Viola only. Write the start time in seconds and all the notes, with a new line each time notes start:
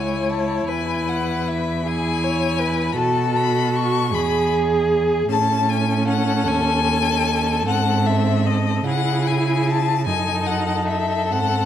Already playing: E4
1.86 E4
2.97 F#4
4.15 G#4
5.30 C#4
7.67 C4
8.86 E4
10.08 D#4
11.33 C4